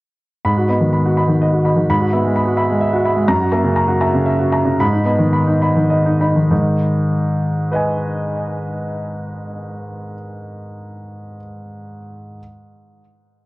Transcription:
0.45 1.85 G#2 soft
0.45 0.65 B5 soft
0.57 0.77 F#4 soft
0.69 1.08 B3 soft
0.69 0.80 D#5 soft
0.69 0.81 B5 soft
0.81 1.01 D#3 soft
0.93 1.13 B5 soft
1.06 1.25 F#4 soft
1.17 1.28 D#5 soft
1.17 1.28 B5 soft
1.28 1.48 D#3 soft
1.42 1.61 D#5 soft
1.53 1.72 F#4 soft
1.65 1.76 D#5 soft
1.65 1.76 B5 soft
1.76 1.89 D#3 soft
1.89 3.26 G#2 soft
1.89 2.08 B5 medium
2.00 2.19 F#4 soft
2.12 2.50 B3 soft
2.12 2.23 E5 soft
2.12 2.23 B5 soft
2.24 2.43 G#3 soft
2.36 2.54 B5 soft
2.45 2.65 F#4 soft
2.56 2.68 E5 soft
2.56 2.69 B5 soft
2.70 2.89 G#3 soft
2.81 3.00 E5 soft
2.93 3.12 F#4 soft
3.04 3.16 E5 soft
3.04 3.16 B5 soft
3.15 3.29 G#3 soft
3.28 4.74 F#2 medium
3.28 3.48 A#5 medium
3.40 3.60 F#4 soft
3.52 3.92 A#3 soft
3.52 3.64 E5 soft
3.52 3.64 A#5 soft
3.63 3.84 C#3 soft
3.76 3.96 A#5 medium
3.88 4.09 F#4 soft
4.01 4.13 E5 soft
4.01 4.13 A#5 medium
4.13 4.34 C#3 soft
4.26 4.47 E5 soft
4.39 4.60 F#4 soft
4.51 4.64 E5 soft
4.51 4.64 A#5 soft
4.65 4.79 C#3 soft
4.80 6.47 G#2 medium
4.80 5.01 B5 medium
4.93 5.14 D#4 soft
5.05 5.50 B3 soft
5.05 5.18 D#5 soft
5.05 5.19 B5 soft
5.19 5.42 D#3 soft
5.33 5.56 B5 soft
5.47 5.70 D#4 soft
5.62 5.75 D#5 soft
5.62 5.75 B5 soft
5.76 6.00 D#3 soft
5.90 6.14 D#5 soft
6.06 6.19 D#4 soft
6.20 6.51 D#4 soft
6.20 6.34 D#5 soft
6.20 6.35 B5 soft
6.36 6.50 D#3 soft
6.51 10.14 G#2 soft
6.51 10.14 D#3 soft
7.71 11.35 B4 soft
7.71 11.36 D#5 soft
7.71 11.39 G#5 soft

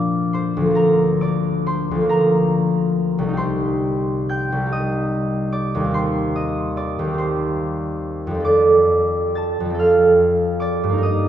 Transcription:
0.00 0.70 A#2 medium
0.00 0.60 F3 medium
0.00 0.65 A#3 medium
0.00 0.70 D4 medium
0.00 0.75 A#4 medium
0.00 1.21 D5 medium
0.00 2.91 F5 medium
0.00 0.74 A#5 medium
0.00 1.20 D6 medium
0.00 2.90 F6 medium
0.33 0.80 C5 medium
0.33 1.07 C6 medium
0.57 1.90 D2 medium
0.61 1.94 F3 medium
0.66 2.00 A#3 soft
0.71 2.03 D4 medium
0.75 2.09 A#4 medium
0.75 2.08 A#5 medium
1.21 3.40 D5 medium
1.21 3.39 D6 medium
1.66 3.37 C5 medium
1.66 2.37 C6 medium
1.91 3.31 D2 medium
1.91 3.33 F3 medium
2.01 3.36 A#3 medium
2.01 3.38 D4 medium
2.09 3.41 A#4 medium
2.09 3.40 A#5 medium
3.18 4.51 C2 medium
3.23 4.55 G3 medium
3.28 4.61 D#4 medium
3.33 4.65 G4 soft
3.33 5.93 C6 medium
3.38 5.94 C5 medium
4.29 8.20 G5 medium
4.29 8.19 G6 medium
4.52 5.87 C2 medium
4.57 5.79 G3 soft
4.62 8.42 D#4 soft
4.66 5.89 G4 soft
4.72 6.35 D#5 medium
4.72 6.34 D#6 medium
5.52 5.97 D5 medium
5.52 6.22 D6 medium
5.75 6.98 D#2 medium
5.80 7.03 G3 soft
5.84 7.07 C4 soft
5.90 7.13 G4 medium
5.94 7.18 C5 medium
5.94 7.17 C6 medium
6.36 8.47 D#5 medium
6.36 8.47 D#6 medium
6.77 8.45 D5 medium
6.77 7.46 D6 medium
6.99 8.37 D#2 medium
7.04 8.40 G3 medium
7.04 8.34 C4 soft
7.14 8.45 G4 soft
7.18 11.08 C5 medium
7.18 11.07 C6 medium
8.27 9.59 F2 medium
8.27 9.64 F3 medium
8.35 9.69 C4 medium
8.40 9.73 A4 medium
8.45 10.61 D5 medium
8.45 10.59 D6 medium
9.35 11.08 A5 medium
9.35 11.07 A6 medium
9.60 10.98 F2 medium
9.65 11.01 F3 medium
9.70 11.03 C4 medium
9.75 11.05 A4 medium
9.79 11.08 F5 medium
9.79 11.08 F6 medium
10.60 11.08 D5 medium
10.60 11.28 D6 medium
10.84 11.28 G2 medium
10.89 11.28 A#3 medium
10.89 11.28 D#4 medium
10.98 11.28 A#4 medium
11.03 11.28 D#5 medium
11.03 11.28 D#6 medium

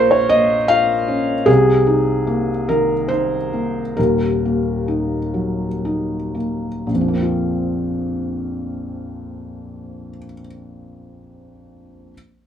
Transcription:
0.00 1.43 A#1 medium
0.00 1.43 A#2 medium
0.00 0.17 A#3 medium
0.00 1.08 C#4 medium
0.00 0.55 F4 medium
0.00 1.50 A#4 loud
0.00 0.12 C5 loud
0.00 0.11 C#5 loud
0.11 0.31 C#5 loud
0.29 0.93 A#3 medium
0.29 0.69 D#5 loud
0.68 1.32 F4 medium
0.68 1.46 F5 loud
1.08 1.47 C#4 medium
1.46 3.93 C2 medium
1.46 3.93 C3 medium
1.46 2.67 G#4 loud
1.87 2.51 D#4 medium
2.27 2.92 A#3 medium
2.69 3.36 D#3 medium
2.69 3.10 A#4 loud
3.08 3.79 D#4 medium
3.08 3.97 C5 loud
3.53 3.98 A#3 medium
3.97 6.85 D#1 medium
3.97 6.85 D#2 medium
3.97 6.36 A#4 medium
4.45 5.19 A#3 medium
4.88 5.65 D#4 medium
5.34 6.15 F#3 soft
5.85 6.67 D#4 medium
6.35 6.87 A#3 soft
6.87 10.10 A#1 medium
6.94 10.17 F2 medium
7.01 10.24 F3 medium
7.08 10.32 A#3 medium
7.16 10.39 C4 medium
7.23 10.46 F4 medium

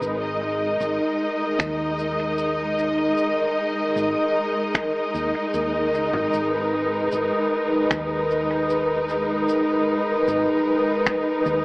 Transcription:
0.00 0.76 G#1 medium
0.00 11.65 G#3 medium
0.00 11.65 D#4 medium
0.00 11.65 A#4 medium
0.00 0.23 B4 medium
0.00 shaker medium
0.19 6.55 D#5 medium
0.80 0.97 G#1 medium
0.80 shaker medium
1.59 3.13 D#2 loud
1.59 finger snap loud
1.59 kick loud
1.59 shaker medium
1.99 shaker soft
2.38 shaker medium
2.78 shaker medium
3.17 shaker medium
3.96 4.13 G#1 medium
3.96 shaker medium
4.74 finger snap loud
4.74 kick loud
4.74 shaker medium
5.14 5.32 D#2 medium
5.14 shaker soft
5.54 5.94 D#2 medium
5.54 shaker medium
5.94 6.11 C#2 medium
5.94 shaker soft
6.13 6.31 G#1 medium
6.13 mid tom medium
6.33 7.08 G#1 medium
6.33 shaker medium
6.51 11.65 B4 medium
7.12 7.29 G#1 medium
7.12 shaker medium
7.91 9.45 D#2 loud
7.91 finger snap loud
7.91 kick loud
7.91 shaker medium
8.31 shaker soft
8.70 shaker medium
9.09 shaker soft
9.49 shaker medium
10.27 10.45 G#1 medium
10.27 shaker medium
11.06 finger snap medium
11.06 kick loud
11.06 shaker medium
11.46 11.63 D#2 medium
11.46 shaker soft

